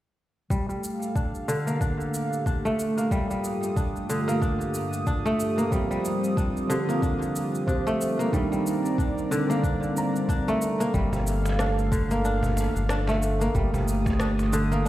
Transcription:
0.50 kora G3, analog synth pad A3 G4 A4 F5, kick, cabasa
0.69 kora G3, cabasa
0.84 cabasa
1.02 cabasa
1.16 kora D4, kick, cabasa
1.35 cabasa
1.48 kora D3, cabasa
1.67 kora A#3, cabasa
1.81 kora D4, kick, cabasa
2.01 cabasa
2.14 cabasa
2.33 cabasa
2.46 kora D4, kick, cabasa
2.65 kora A3, cabasa
2.79 cabasa
2.98 kora A#3, cabasa
3.11 analog synth pad G2 F4 D#6, kora G3, kick, cabasa
3.30 kora G3, cabasa
3.44 cabasa
3.63 cabasa
3.76 kora D4, kick, cabasa
3.96 cabasa
4.09 kora D3, cabasa
4.28 kora A#3, cabasa
4.42 kora D4, kick, cabasa
4.61 cabasa
4.74 cabasa
4.93 cabasa
5.07 kora D4, kick, cabasa
5.26 kora A3, cabasa
5.40 cabasa
5.58 kora A#3, cabasa
5.71 felt piano F3 C4 G4, kora G3, analog synth pad G3 C4 F4, kick, cabasa
5.91 kora G3, cabasa
6.05 cabasa
6.24 cabasa
6.37 kora D4, kick, cabasa
6.57 cabasa
6.67 kora D3, felt piano F3 C4 G4, cabasa
6.89 kora A#3, cabasa
7.02 kora D4, kick, cabasa
7.22 cabasa
7.36 cabasa
7.55 cabasa
7.67 felt piano F3 C4 G4, kora D4, kick, cabasa
7.87 kora A3, cabasa
8.01 cabasa
8.19 kora A#3, cabasa
8.31 felt piano D#3 D4 A#4, analog synth pad G3 C4 D5 A#5, kora G3, kick, cabasa
8.52 kora G3, cabasa
8.67 cabasa
8.86 cabasa
8.98 kora D4, kick, cabasa
9.18 cabasa
9.31 kora D3, felt piano D4 A#4, cabasa
9.50 kora A#3, cabasa
9.64 kora D4, kick, cabasa
9.83 cabasa
9.96 felt piano D4 A#5, cabasa
10.16 cabasa
10.29 kora D4, kick, cabasa
10.48 kora A3, cabasa
10.62 cabasa
10.80 kora A#3, cabasa
10.94 analog synth bass G1, kora G3, analog synth pad A3 A4 F5, kick, cabasa
11.13 kora G3, cajon bass, cabasa
11.27 cabasa
11.45 cajon slap, cabasa
11.59 kora D4, cross-stick, cabasa
11.79 cabasa
11.92 kora D3, kick, cabasa
12.11 kora A#3, cabasa
12.25 kora D4, cabasa
12.43 cajon bass, cabasa
12.57 cajon slap, cabasa
12.76 analog synth bass G1, cabasa
12.89 kora D4, cross-stick, cabasa
13.07 kora A3, cajon slap, cabasa
13.22 cabasa
13.41 kora A#3, cabasa
13.55 analog synth bass G1, kora G3, analog synth pad G4 D#6, kick, cabasa
13.74 kora G3, cajon bass, cabasa
13.88 cabasa
14.06 kick, cross-stick, cajon slap, cabasa
14.20 kora D4, cross-stick, cabasa
14.39 cajon slap, cabasa
14.53 kora D3, cabasa
14.72 kora A#3, cabasa
14.85 kora D4

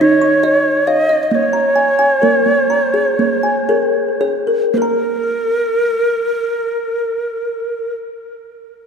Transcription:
Already playing: kalimba C#5 D#6
0.01 kalimba D#4, native american-style wooden flute C#5
0.21 kalimba C#6
0.43 kalimba C#5 D#5
0.87 kalimba C#5 F5, native american-style wooden flute D#5
1.09 kalimba D#5
1.23 native american-style wooden flute D#5
1.31 kalimba A#3, native american-style wooden flute C#5 D#5
1.53 kalimba A#5
1.76 kalimba G#5
1.99 kalimba G#5
2.22 kalimba A#3 A#4
2.46 kalimba A#3
2.70 kalimba A#5
2.94 kalimba G#4
3.19 kalimba A#3
3.43 kalimba G#5
3.69 kalimba G#4 A#4
4.21 kalimba G#4 C#5
4.47 kalimba A#4
4.74 kalimba A#3, native american-style wooden flute A#4 C5
4.78 kalimba A#4
4.82 kalimba A#5

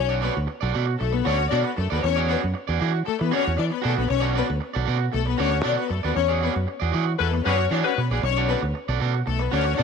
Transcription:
Already playing: fingered electric bass B1
0.09 clean electric guitar F#4 A4 D5
0.21 string section B3 B4, clean electric guitar F#4 A4 D5
0.35 fingered electric bass D2, muted clean electric guitar stroke
0.47 muted clean electric guitar stroke
0.61 fingered electric bass B1, clean electric guitar F#4 A4 D5
0.73 fingered electric bass B2, clean electric guitar F#4 A4 D5
0.87 muted clean electric guitar stroke
0.99 fingered electric bass B1, string section A3 A4, muted clean electric guitar stroke
1.13 string section B3 B4, muted clean electric guitar stroke
1.25 fingered electric bass D2, string section C#4 C#5, clean electric guitar F#4 A4 D5
1.39 muted clean electric guitar stroke
1.50 fingered electric bass B2, string section D4 D5, clean electric guitar F#4 A4 D5
1.65 string section B3 B4, muted clean electric guitar stroke
1.77 fingered electric bass F#2, string section A3 A4, muted clean electric guitar stroke
1.90 fingered electric bass D#2, string section B3 B4, clean electric guitar F#4 A4 D5
2.03 fingered electric bass E2, string section C#4 C#5, muted clean electric guitar stroke
2.16 clean electric guitar F#4 G#4 D5
2.28 string section B3 B4, clean electric guitar F#4 G#4 D5
2.42 fingered electric bass F#2, muted clean electric guitar stroke
2.54 muted clean electric guitar stroke
2.67 fingered electric bass E2, clean electric guitar F#4 G#4 D5
2.79 fingered electric bass E3, clean electric guitar F#4 G#4 D5
2.93 muted clean electric guitar stroke
3.05 string section A3 A4, muted clean electric guitar stroke, muted fingered electric bass stroke
3.19 fingered electric bass E3, string section B3 B4, muted clean electric guitar stroke
3.31 string section C#4 C#5, clean electric guitar F#4 G#4 D5
3.45 fingered electric bass E2, muted clean electric guitar stroke
3.57 fingered electric bass E3, string section D4 D5, muted clean electric guitar stroke
3.70 string section B3 B4, muted clean electric guitar stroke
3.82 fingered electric bass B2, string section A3 A4, clean electric guitar F#4 G#4 D5
3.97 fingered electric bass A#1, string section B3 B4, muted clean electric guitar stroke
4.07 fingered electric bass B1, string section C#4 C#5, muted clean electric guitar stroke
4.20 clean electric guitar F#4 A4 D5
4.33 string section B3 B4, clean electric guitar F#4 A4 D5
4.48 fingered electric bass D2, muted clean electric guitar stroke
4.60 muted clean electric guitar stroke
4.74 fingered electric bass B1, clean electric guitar F#4 A4 D5
4.85 fingered electric bass B2, clean electric guitar F#4 A4 D5
4.99 muted clean electric guitar stroke
5.12 fingered electric bass B1, string section A3 A4, muted clean electric guitar stroke
5.26 string section B3 B4, muted clean electric guitar stroke
5.38 fingered electric bass D2, string section C#4 C#5, clean electric guitar F#4 A4 D5
5.52 muted clean electric guitar stroke
5.63 fingered electric bass B2, string section D4 D5, clean electric guitar F#4 A4 D5
5.77 string section B3 B4, muted clean electric guitar stroke
5.89 fingered electric bass F#2, string section A3 A4, muted clean electric guitar stroke
6.03 fingered electric bass D#2, string section B3 B4, clean electric guitar F#4 A4 D5
6.15 fingered electric bass E2, string section C#4 C#5, muted clean electric guitar stroke
6.28 clean electric guitar F#4 G#4 D5
6.41 string section B3 B4, clean electric guitar F#4 G#4 D5
6.55 fingered electric bass F#2, muted clean electric guitar stroke
6.67 muted clean electric guitar stroke
6.80 fingered electric bass E2, clean electric guitar F#4 G#4 D5
6.92 fingered electric bass E3, clean electric guitar F#4 G#4 D5
7.06 muted clean electric guitar stroke
7.19 fingered electric bass E2, horn section G#3 F#4 B4, string section A3 A4, muted clean electric guitar stroke
7.32 string section B3 B4, muted clean electric guitar stroke
7.45 fingered electric bass F#2, horn section G#3 F#4 B4, string section C#4 C#5, clean electric guitar F#4 G#4 D5
7.60 muted clean electric guitar stroke
7.71 fingered electric bass E3, string section D4 D5, clean electric guitar F#4 G#4 D5
7.84 horn section G#3 F#4 B4, string section C#4 C#5, muted clean electric guitar stroke
7.97 fingered electric bass B2, string section B3 B4, muted clean electric guitar stroke
8.11 fingered electric bass A#1, string section G#3 G#4, clean electric guitar F#4 G#4 D5
8.23 fingered electric bass B1, string section C#4 C#5, muted clean electric guitar stroke
8.37 clean electric guitar F#4 A4 D5
8.49 string section B3 B4, clean electric guitar F#4 A4 D5
8.63 fingered electric bass D2, muted clean electric guitar stroke
8.74 muted clean electric guitar stroke
8.88 fingered electric bass B1, clean electric guitar F#4 A4 D5
9.00 fingered electric bass B2, clean electric guitar F#4 A4 D5
9.14 muted clean electric guitar stroke
9.26 fingered electric bass B1, string section A3 A4, muted clean electric guitar stroke
9.39 string section B3 B4, muted clean electric guitar stroke
9.51 fingered electric bass D2, string section C#4 C#5, clean electric guitar F#4 A4 D5
9.65 muted clean electric guitar stroke
9.77 fingered electric bass B2, string section D4 D5, clean electric guitar F#4 A4 D5

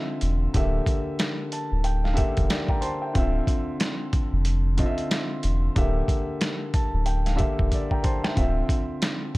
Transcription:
Already playing: grand piano D3 C4 F4 D#5 E5
0.21 sub bass E1, closed hi-hat
0.54 sub bass D1, grand piano D3 A#3 G4 E5, kick, closed hi-hat
0.86 kick, closed hi-hat
1.19 snare, closed hi-hat
1.52 grand piano A5, closed hi-hat
1.72 sub bass D1
1.84 grand piano G5, closed hi-hat
2.04 grand piano F5, snare
2.14 grand piano D3 A#3 G4 E5, closed hi-hat
2.18 kick
2.37 sub bass E1, kick, closed hi-hat
2.50 grand piano D5, snare, closed hi-hat
2.68 grand piano G5 A#5, kick
2.81 grand piano C5 A5 C6, closed hi-hat
3.02 grand piano E5 G5
3.13 sub bass D1, grand piano D3 C4 F4 E5, kick, closed hi-hat
3.47 kick, closed hi-hat
3.80 snare, closed hi-hat
4.13 kick, closed hi-hat
4.33 sub bass F1
4.45 closed hi-hat
4.77 grand piano D3 C4 F4 D#5, kick, closed hi-hat
4.86 grand piano E5
4.98 closed hi-hat
5.11 snare, closed hi-hat
5.43 sub bass E1, closed hi-hat
5.76 sub bass D1, grand piano D3 A#3 G4 E5, kick, closed hi-hat
6.08 kick, closed hi-hat
6.41 snare, closed hi-hat
6.74 grand piano A5, kick, closed hi-hat
6.94 sub bass D1
7.06 grand piano G5, closed hi-hat
7.26 grand piano F5, snare, closed hi-hat
7.36 grand piano D3 A#3 G4 E5, closed hi-hat
7.40 kick
7.59 sub bass E1, kick
7.72 grand piano D5, kick, closed hi-hat
7.91 grand piano G5 A#5, kick
8.03 grand piano C5 A5 C6, kick, closed hi-hat
8.24 grand piano E5 G5, snare
8.35 sub bass D1, grand piano D3 C4 F4 E5, kick, closed hi-hat
8.69 kick, closed hi-hat
9.02 snare, closed hi-hat
9.35 kick

